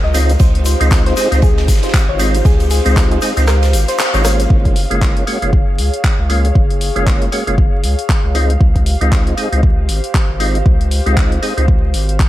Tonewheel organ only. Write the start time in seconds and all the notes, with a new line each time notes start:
0.14 G#3 C4 D#4 F4
0.80 G#3 C4 D#4 F4
1.16 G#3 C4 D#4 G#4
1.32 G#3 C4 D#4 F4
2.19 G#3 C4 D#4 F4
2.85 G#3 C4 D#4 F4
3.22 G#3 C4 D#4 G#4
3.37 G#3 C4 D#4 F4
4.14 G#3 C4 D#4 F4
4.24 G#3 A#3 C#4 F4
4.91 G#3 A#3 C#4 F4
5.27 G#3 A#3 C#4 F#4
5.42 G#3 A#3 C#4 F4
6.29 G#3 A#3 C#4 F4
6.96 G#3 A#3 C#4 F4
7.32 G#3 A#3 C#4 F#4
7.47 G#3 A#3 C#4 F4
8.34 G#3 C4 D#4 F4
9.01 G#3 C4 D#4 F4
9.37 G#3 C4 D#4 G#4
9.52 G#3 C4 D#4 F4
10.40 G#3 C4 D#4 F4
11.06 G#3 C4 D#4 F4
11.42 G#3 C4 D#4 G#4
11.57 G#3 C4 D#4 F4